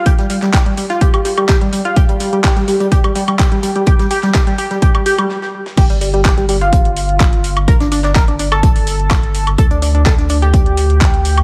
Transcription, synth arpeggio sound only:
\new Staff \with { instrumentName = "Synth arpeggio sound" } { \time 4/4 \key d \phrygian \tempo 4 = 126 g'16 g16 g16 g16 g'16 g16 g16 f'16 g'16 g16 g16 g16 g'16 g16 g16 f'16 | g'16 g16 g16 g16 g'16 g16 g16 g16 g'16 g16 g16 g16 g'16 g16 g16 g16 | g'16 g16 g'16 g16 g'16 g16 g'16 g16 g'16 g16 g'16 g16 r4 | g'16 g16 g16 g16 g'16 g16 g16 f'2 r16 |
bes'16 d'16 d'16 d'16 bes'16 d'16 d'16 a'2 r16 | a'16 d'16 d'16 d'16 a'16 d'16 d'16 g'2 r16 | }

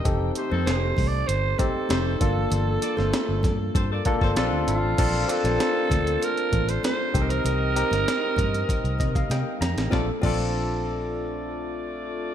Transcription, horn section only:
\new Staff \with { instrumentName = "Horn section" } { \time 4/4 \key bes \major \tempo 4 = 97 r8 <a g' c''>16 <ees c' a'>8. r4. <a g' c''>8 r8 | r8 <bes a' d''>16 <a f' c''>8. r8 <c' a' c''>16 <bes a' d''>16 r16 <c' a' c''>16 r4 | <bes f' c''>2. r8 <c' bes' ees''>8~ | <c' bes' ees''>2.~ <c' bes' ees''>8 r8 |
<a f' d''>16 r16 <a f' d''>2.~ <a f' d''>8 | }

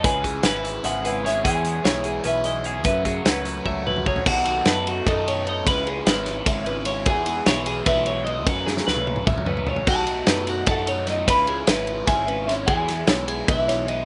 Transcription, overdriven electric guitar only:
\new Staff \with { instrumentName = "Overdriven electric guitar" } { \time 7/8 \key e \major \tempo 4 = 150 <cis gis cis' e' gis'>8 <cis' e' gis'>8 <gis cis' e' gis'>4 <cis gis cis' e' gis'>8 <cis' e' gis'>8 <gis cis' e' gis'>8 | <e gis b e' gis'>8 <b e' gis'>8 <gis b e' gis'>4 <e gis b e' gis'>8 <b e' gis'>8 <gis b e' gis'>8 | <fis, cis fis a cis' fis'>8 <fis a cis' fis'>8 <fis a cis' fis'>4 <fis, cis fis a cis' fis'>8 <fis a cis' fis'>8 <fis a cis' fis'>8 | <b, dis fis b dis' a'>8 <fis b dis' a'>8 <fis b dis' a'>4 <b, dis fis b dis' a'>8 <fis b dis' a'>8 <fis b dis' a'>8 |
<cis gis cis' e'>8 <gis cis' e'>8 <cis gis cis' e'>4 <cis gis cis' e'>8 <gis cis' e'>8 <cis gis cis' e'>8 | <e gis b e'>8 <gis b e'>8 <e gis b e'>4 <e gis b e'>8 <gis b e'>8 <e gis b e'>8 | <fis, cis fis a cis'>8 <fis a cis'>8 <cis fis a cis'>4 <fis, cis fis a cis'>8 <fis a cis'>8 <cis fis a cis'>8 | <b, fis a dis'>8 <fis a dis'>8 <b, fis a dis'>4 <b, fis a dis'>8 <fis a dis'>8 <b, fis a dis'>8 |
<cis gis cis' e'>8 <gis cis' e'>8 <cis gis cis' e'>4 <cis gis cis' e'>8 <gis cis' e'>8 <cis gis cis' e'>8 | <e gis b e'>8 <gis b e'>8 <e gis b e'>4 <e gis b e'>8 <gis b e'>8 <e gis b e'>8 | }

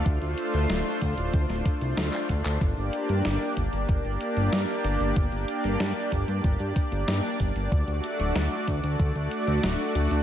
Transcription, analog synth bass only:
\new Staff \with { instrumentName = "Analog synth bass" } { \clef bass \time 4/4 \key g \minor \tempo 4 = 94 d,16 d,16 r16 d,16 d,,16 r16 d,16 d,,16 d,16 d,,16 r16 c,16 d,16 r16 d,16 d,16 | g,,16 g,,16 r16 g,16 g,,16 r16 g,,16 g,,16 g,,16 g,,16 r16 g,,16 g,16 r16 g,,16 g,,16 | g,,16 g,,16 r16 g,,16 g,16 r16 g,,16 g,16 g,,16 g,16 r16 g,,16 g,16 r16 g,,16 g,,16 | d,16 d,16 r16 d,,16 d,16 r16 d,16 d,16 d,16 d,16 r16 d,16 d,,16 r16 d,16 d,16 | }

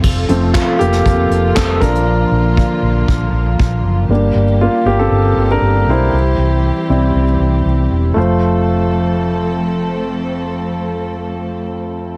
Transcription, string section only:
\new Staff \with { instrumentName = "String section" } { \time 4/4 \key f \major \tempo 4 = 118 << { <f f'>1~ | <f f'>1 | <g g'>1~ | <g g'>1 |
<f a c' a'>1~ | <f a c' a'>1 | } \\ { <c a'>2.~ <c a'>8 <d bes>8~ | <d bes>1 | <d bes>1 | <e c'>1 |
r1 | r1 | } >> }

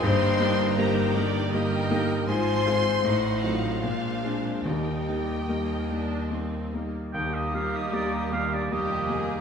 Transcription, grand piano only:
\new Staff \with { instrumentName = "Grand piano" } { \time 3/4 \key ees \major \tempo 4 = 77 g,8 <bes ees' g'>8 <bes ees' g'>8 <bes ees' g'>8 <bes ees' g'>8 <bes ees' g'>8 | aes,8 <aes c' f'>8 a,8 <fis c' ees'>8 bes,8 <aes c' d'>8 | ees,8 <g bes ees'>8 <g bes ees'>8 <g bes ees'>8 <g bes ees'>8 <g bes ees'>8 | ees,8 <g bes g'>8 <g bes g'>8 <g bes g'>8 <g bes g'>8 <g bes g'>8 | }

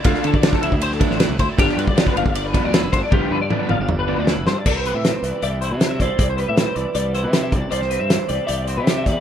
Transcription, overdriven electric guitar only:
\new Staff \with { instrumentName = "Overdriven electric guitar" } { \clef bass \time 4/4 \key c \major \tempo 4 = 157 <d f a d'>8 r8 <d f a d'>8 r4 <d f a d'>8 r4 | <d f b d'>8 r8 <d f b d'>8 r4 <d f b d'>8 r4 | <d f b d'>8 r8 <d f b d'>8 r4 <d f b d'>8 r4 | r1 |
r1 | r1 | }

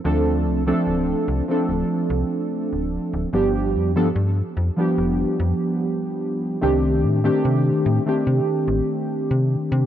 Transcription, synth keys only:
\new Staff \with { instrumentName = "Synth keys" } { \time 4/4 \key c \dorian \tempo 4 = 73 <f a c' d' a'>8. <f a c' d' a'>4 <f a c' d' a'>2~ <f a c' d' a'>16 | <f g b d' g'>8. <f g b d' a'>16 r8. <f g b d' g'>2~ <f g b d' g'>16 | <ees a c' d' g'>8. <ees a c' d' g'>4 <ees a c' d' g'>2~ <ees a c' d' g'>16 | }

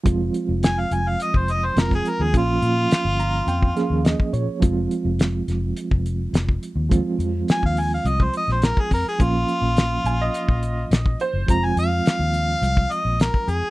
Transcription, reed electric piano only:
<<
  \new Staff \with { instrumentName = "Reed electric piano" } { \time 4/4 \key f \minor \tempo 4 = 105 r1 | r4. bes''8 g''8 f''8 ees''8 des''8 | r1 | r1 |
r1 | r1 | }
  \new Staff \with { instrumentName = "Reed electric piano" } { \time 4/4 \key f \minor <f aes c' f'>2. <f aes c' f'>4 | <f bes des' f'>2~ <f bes des' f'>8 <f bes des' aes'>4. | <f aes c' f'>1 | <f aes c' f'>1 |
<f bes des' f'>1 | <f aes c' f'>1 | }
>>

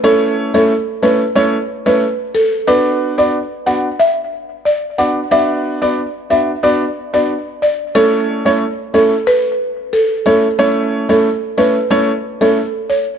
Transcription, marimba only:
\new Staff \with { instrumentName = "Marimba" } { \time 4/4 \key a \mixolydian \tempo 4 = 91 a'16 r8 a'16 r8 b'16 r16 cis''16 r8 b'16 r8 a'16 r16 | b'16 r8 d''16 r8 fis''16 r16 e''8. r16 d''16 r16 fis''16 r16 | e''16 r8 d''16 r8 e''16 r16 d''16 r8 d''16 r8 d''16 r16 | a'16 r8 cis''16 r8 a'16 r16 b'8. r16 a'16 r16 a'16 r16 |
cis''16 r8 a'16 r8 b'16 r16 cis''16 r8 a'16 r8 cis''16 r16 | }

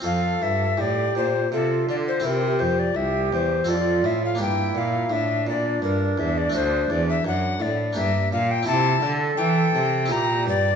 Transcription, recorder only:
\new Staff \with { instrumentName = "Recorder" } { \time 3/4 \key f \major \tempo 4 = 84 f''8 e''8 d''8 c''8 a'8 d''16 c''16 | bes'8 c''16 d''16 e''8 c''8 d''8 e''16 f''16 | g''8 f''8 e''8 d''8 bes'8 e''16 d''16 | c''8 d''16 e''16 fis''8 d''8 e''8 f''16 g''16 |
a''8. r16 g''4 bes''8 d''8 | }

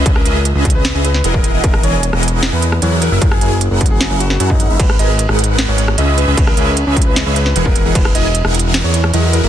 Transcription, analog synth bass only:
\new Staff \with { instrumentName = "Analog synth bass" } { \clef bass \time 4/4 \key e \lydian \tempo 4 = 152 cis,8 cis,8. cis,4 cis,8. e,,8. e,,16 | e,,8 e,,8. e,,4 e,8. e,8. fis,,16 | fis,,8 fis,,8. fis,,4 fis,,8. fis,8. fis,,16 | gis,,8 gis,,8. gis,,4 gis,,8. cis,8. cis,16 |
cis,8 cis,8. cis,4 cis,8. e,,8. e,,16 | e,,8 e,,8. e,,4 e,8. e,8. fis,,16 | }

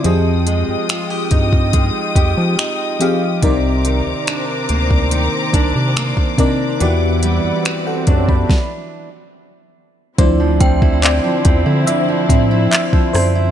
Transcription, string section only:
\new Staff \with { instrumentName = "String section" } { \time 4/4 \key e \phrygian \tempo 4 = 71 << { ees'''1 | d'''1~ | d'''2 r2 | f1 | } \\ { <f' g''>1 | <c' c'' bes''>1 | <e' b' fis''>2 r2 | <d c' e'>1 | } >> }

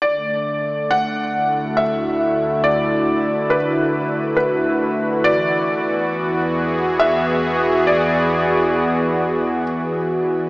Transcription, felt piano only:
\new Staff \with { instrumentName = "Felt piano" } { \time 3/4 \key d \major \tempo 4 = 69 d''4 fis''4 e''4 | d''4 b'4 b'4 | d''2 e''4 | d''2 r4 | }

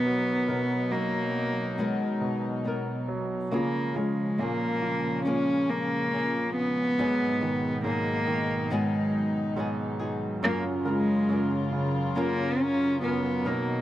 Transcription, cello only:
\new Staff \with { instrumentName = "Cello" } { \time 4/4 \key fis \major \tempo 4 = 70 b4 ais4 gis4 r4 | ais8 gis8 ais4 cis'8 ais4 b8~ | b4 ais4 gis4 r4 | ais8 gis4 r8 ais8 cis'8 b8 ais8 | }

